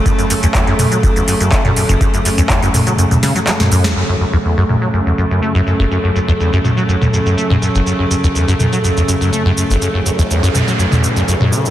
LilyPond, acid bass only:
\new Staff \with { instrumentName = "Acid bass" } { \clef bass \time 4/4 \key fis \minor \tempo 4 = 123 fis,16 fis,16 fis,16 e,16 e,16 fis,16 fis,16 fis16 fis,16 e,16 fis,16 fis,16 a16 fis,16 fis,16 fis,,16 | fis,16 fis,16 fis,16 e,16 e,16 fis,16 fis,16 fis16 fis,16 e,16 cis16 fis16 fis16 fis,16 fis,16 e,16 | fis,16 fis,16 fis,16 e,16 e,16 fis,16 fis,16 fis16 fis,16 e,16 fis,16 fis,16 a16 fis,16 fis,16 fis,,16 | fis,16 fis,16 fis,16 e,16 e,16 fis,16 fis,16 fis16 fis,16 e,16 fis,16 fis,16 a16 fis,16 fis,16 fis,,16 |
fis,16 fis,16 fis,16 e,16 e,16 fis,16 fis,16 fis16 fis,16 e,16 fis,16 fis,16 a16 fis,16 fis,16 fis,,16 | fis,16 fis,16 fis,16 e,16 e,16 fis,16 fis,16 fis16 fis,16 e,16 fis,16 fis,16 fis,16 fis,16 cis16 fis,16 | }